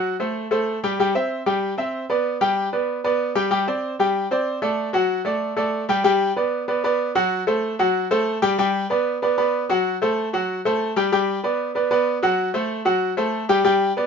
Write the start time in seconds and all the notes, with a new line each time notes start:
Already playing: F#3 F#4 F#5
0.20 A3 A4 C5
0.51 A3 A4 C5
0.84 G3 G4 G5
0.99 G3 G4 G5
1.15 C4 C5 E5
1.46 G3 G4 G5
1.78 C4 C5 E5
2.10 B3 B4 D5
2.41 G3 G4 G5
2.73 B3 B4 D5
3.04 B3 B4 D5
3.35 G3 G4 G5
3.51 G3 G4 G5
3.67 C4 C5 D5
3.99 G3 G4 G5
4.31 C4 C5 D5
4.62 A3 A4 D5
4.93 F#3 F#4 F#5
5.25 A3 A4 D5
5.57 A3 A4 D5
5.89 G3 G4 G5
6.04 G3 G4 G5
6.36 B3 B4 D5
6.68 B3 B4 D5
6.84 B3 B4 D5
7.15 F#3 F#4 F#5
7.47 A3 A4 C5
7.79 F#3 F#4 F#5
8.11 A3 A4 C5
8.42 G3 G4 G5
8.58 G3 G4 G5
8.90 B3 B4 D5
9.22 B3 B4 D5
9.38 B3 B4 D5
9.70 F#3 F#4 F#5
10.02 A3 A4 C5
10.33 F#3 F#4 F#5
10.65 A3 A4 C5
10.96 G3 G4 G5
11.12 G3 G4 G5
11.44 B3 B4 D5
11.75 B3 B4 D5
11.91 B3 B4 D5
12.23 F#3 F#4 F#5
12.54 A3 A4 C5
12.85 F#3 F#4 F#5
13.17 A3 A4 C5
13.49 G3 G4 G5
13.64 G3 G4 G5
13.97 B3 B4 D5